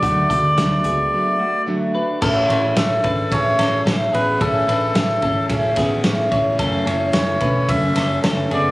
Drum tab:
CC |--------|x-------|--------|--------|
RD |--------|-xxxxxxx|xxxxxxxx|xxxxxxxx|
HH |xxxx----|--------|--------|--------|
SD |--o-----|--o--oo-|--o--oo-|--o--oo-|
BD |oo-o----|o--oo---|o--ooo-o|o--oo---|